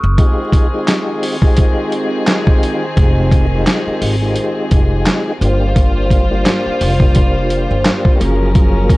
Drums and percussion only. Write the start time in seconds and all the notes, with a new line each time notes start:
0.18 kick, closed hi-hat
0.52 kick, closed hi-hat
0.88 snare, clap, closed hi-hat
1.23 open hi-hat
1.42 kick
1.57 kick, closed hi-hat
1.92 closed hi-hat
2.27 snare, clap, closed hi-hat
2.47 kick
2.63 closed hi-hat
2.97 kick, closed hi-hat
3.31 kick, closed hi-hat
3.67 snare, clap, closed hi-hat
4.02 open hi-hat
4.36 closed hi-hat
4.71 kick, closed hi-hat
5.06 snare, clap, closed hi-hat
5.42 closed hi-hat
5.76 kick, closed hi-hat
6.10 kick, closed hi-hat
6.46 snare, clap, closed hi-hat
6.81 open hi-hat
7.00 kick
7.15 kick, closed hi-hat
7.50 closed hi-hat
7.85 snare, clap, closed hi-hat
8.05 kick
8.21 closed hi-hat
8.55 kick, closed hi-hat
8.89 kick, closed hi-hat